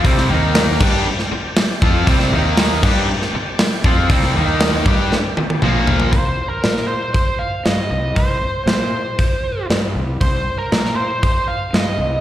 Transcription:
<<
  \new Staff \with { instrumentName = "Lead electric guitar" } { \time 4/4 \key c \minor \tempo 4 = 118 r1 | r1 | r1 | c''8. bes'8. c''8 c''8 f''8 ees''8 ees''8 |
c''4 c''2 r4 | c''8. bes'8. c''8 c''8 f''8 ees''4 | }
  \new Staff \with { instrumentName = "Tonewheel organ" } { \time 4/4 \key c \minor <c' g' d''>8 <ees' bes' f''>4 <c' g' d''>2~ <c' g' d''>8~ | <c' g' d''>8 <ees' bes' f''>4 <c' g' d''>2~ <c' g' d''>8~ | <c' g' d''>8 <ees' bes' f''>4 <c' g' d''>4. <bes f' c''>4 | r1 |
r1 | r1 | }
  \new Staff \with { instrumentName = "Distorted electric guitar" } { \time 4/4 \key c \minor <c g c'>8 <ees bes ees'>4 <g d' g'>8 r4. <f c' f'>8 | <c g c'>8 <ees bes ees'>4 <g d' g'>8 r4. <f c' f'>8 | <c g c'>8 <ees bes ees'>4 <g d' g'>8 r4 <bes, f bes>4 | r1 |
r1 | r1 | }
  \new Staff \with { instrumentName = "Overdriven electric guitar" } { \time 4/4 \key c \minor <c g c'>8 <ees bes ees'>4 <g d' g'>8 r4. <f c' f'>8 | <c g c'>8 <ees bes ees'>4 <g d' g'>8 r4. <f c' f'>8 | <c g c'>8 <ees bes ees'>4 <g d' g'>8 r4 <bes, f bes>4 | r1 |
r1 | r1 | }
  \new Staff \with { instrumentName = "Fingered electric bass" } { \clef bass \time 4/4 \key c \minor c,8 ees,4 g,8 r4. f,8 | c,8 ees,4 g,8 r4. f,8 | c,8 ees,4 g,8 r4 bes,,4 | c,8 r8 bes,8 r4. g,8 c,8 |
c,8 r8 bes,8 r4. g,8 c,8 | c,8 r8 bes,8 r4. g,8 c,8 | }
  \new DrumStaff \with { instrumentName = "Drums" } \drummode { \time 4/4 <hho bd>16 sn8. <hho sn>8 <cymc bd>8 r16 sn8. <hho sn>8 bd8 | <hho bd>16 sn8. <hho sn>8 <cymc bd>8 r16 sn8. <hho sn>8 bd8 | <hho bd>16 sn8. <hho sn>8 bd8 sn8 tommh16 tommh16 toml8 tomfh16 tomfh16 | <hho bd>4 <hho sn>16 sn8. <hho bd>4 <hho sn>4 |
<hho bd>4 <hho sn>4 <hho bd>4 <hho sn>4 | <hho bd>4 <hho sn>16 sn8. <hho bd>4 <hho sn>4 | }
>>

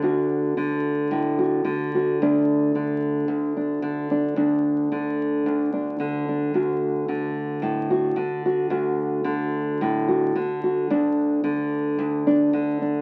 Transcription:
\new Staff \with { instrumentName = "Nylon-string guitar" } { \clef bass \time 4/4 \key d \major \tempo 4 = 110 << { fis'2~ fis'8 fis'4 fis'8 | d'2~ d'8 d'4 d'8 | d'2~ d'8 d'4 d'8 | fis'2~ fis'8 fis'4 fis'8 |
fis'2~ fis'8 fis'4 fis'8 | d'2~ d'8 d'4 d'8 | } \\ { <d, d>4 d4 a,4 d4 | d,4 d4 d,4 d4 | d,4 d4 d,4 d4 | d,4 d4 a,4 d4 |
d,4 d4 a,4 d4 | d,4 d4 d,4 d4 | } >> }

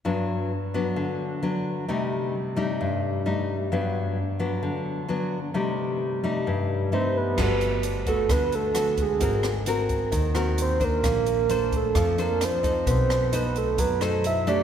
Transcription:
<<
  \new Staff \with { instrumentName = "Soft synth lead" } { \time 4/4 \key g \major \tempo 4 = 131 r1 | r1 | r1 | r2. c''8 b'8~ |
b'4 r8 a'8 b'8 a'4 aes'8~ | aes'8 r2 r8 c''8 bes'8~ | bes'4. a'4 bes'8 c''4 | c''4 b'8 a'8 b'8 a'8 e''8 d''8 | }
  \new Staff \with { instrumentName = "Nylon-string guitar" } { \time 4/4 \key g \major << { <fis b d'>4 r8 <fis b d'>4. <fis b d'>4 | <g a ees'>4 r8 <g a ees'>4. <g a ees'>8 r8 | <fis b d'>4 r8 <fis b d'>4. <fis b d'>8 r8 | <g a ees'>4. <g a ees'>4. <g a ees'>4 |
<b fis' a'>4. <b fis' a'>4. <b fis' a'>8 r8 | <c' ges' bes'>8 r8 <c' ges' bes'>4 r8 <c' ges' bes'>4 <d' c''>8~ | <d' c''>4 <d' a' c''>4 r8 <d' a' c''>4 <ees' a'>8~ | <ees' a'>4 <dis' a' c''>4 r8 <dis' a' c''>4 <a d' g'>8 | } \\ { g,2 d2 | c2 g,2 | g,2 d2 | c2 g,2 |
g2 d2 | aes2 ees2 | bes2 f2 | b2 fis2 | } >> }
  \new Staff \with { instrumentName = "Upright bass" } { \clef bass \time 4/4 \key g \major r1 | r1 | r1 | r1 |
g,,2 d,2 | aes,,2 ees,2 | bes,,2 f,2 | b,,2 fis,2 | }
  \new DrumStaff \with { instrumentName = "Drums" } \drummode { \time 4/4 r4 r4 r4 r4 | r4 r4 r4 r4 | r4 r4 r4 r4 | r4 r4 r4 r4 |
<cymc bd ss>8 hh8 hh8 <hh bd>8 <hh bd ss>8 hh8 <hh ss>8 <hh bd>8 | <hh bd>8 <hh ss>8 hh8 <hh bd>8 <hh bd>8 <hh ss>8 hh8 <hh bd>8 | <hh bd ss>8 hh8 hh8 <hh bd>8 <hh bd ss>8 hh8 <hh ss>8 <hh bd>8 | <hh bd>8 <hh ss>8 hh8 hh8 <hh bd>8 <hh ss>8 hh8 hh8 | }
>>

